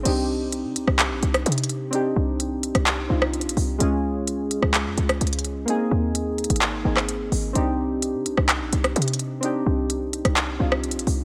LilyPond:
<<
  \new Staff \with { instrumentName = "Synth keys" } { \time 4/4 \key c \minor \tempo 4 = 128 <c' d' ees' g'>1 | <c' d' ees' g'>2~ <c' d' ees' g'>8 <c' d' ees' f'>4. | <aes des' f' aes'>1 | <bes c' ees' aes'>2~ <bes c' ees' aes'>8 <bes c' ees' aes'>4. |
<c' d' ees' g'>1 | <c' d' ees' g'>2~ <c' d' ees' g'>8 <c' d' ees' f'>4. | }
  \new Staff \with { instrumentName = "808-style bass" } { \clef bass \time 4/4 \key c \minor c,4~ c,16 c16 c,16 c,8 bes,,16 c,8 c4~ | c8 c,4~ c,16 c,8. c,8. bes,,16 c,8 | des,4.~ des,16 des,8 f,16 des,8 des,4 | r8 ees,4~ ees,16 aes,,8. aes,,4 aes,,8 |
c,4~ c,16 c16 c,16 c,8 bes,,16 c,8 c4~ | c8 c,4~ c,16 c,8. c,8. bes,,16 c,8 | }
  \new DrumStaff \with { instrumentName = "Drums" } \drummode { \time 4/4 <cymc hh>4 hh8 hh16 ss16 <hc hh>8 hh16 <hh ss>16 hh32 hh32 hh32 hh32 hh8 | hh4 hh8 hh16 <hh ss>16 <hc hh>8. ss16 \tuplet 3/2 { hh16 hh16 hh16 hho16 r16 r16 } | hh4 hh8 hh16 ss16 <hc hh>8 hh16 <hh ss>16 hh32 hh32 hh32 hh32 hh8 | hh4 hh8 hh32 hh32 hh32 hh32 <hc hh>8. <hc ss>16 hh8 hho8 |
hh4 hh8 hh16 ss16 <hc hh>8 hh16 <hh ss>16 hh32 hh32 hh32 hh32 hh8 | hh4 hh8 hh16 <hh ss>16 <hc hh>8. ss16 \tuplet 3/2 { hh16 hh16 hh16 hho16 r16 r16 } | }
>>